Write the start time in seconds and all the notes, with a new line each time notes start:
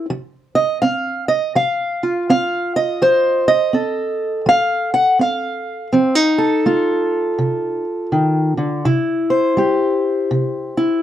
Already playing: C5
0.10 F3
0.55 D#5
0.82 C4 F5
1.28 D#5
1.55 F3 F5
2.03 F4
2.30 C4 F5
2.76 D#5
3.02 F3 C5
3.48 D#5
3.73 C4 A4
4.46 F3 F5
4.94 F#5
5.19 C4 F5
5.93 F3 C4
6.15 D#4
6.38 A4
6.66 A3 F4
7.38 C3
8.12 D#3
8.57 D3
8.85 C3 E4
9.30 C5
9.57 G3 G4
10.31 C3
10.77 E4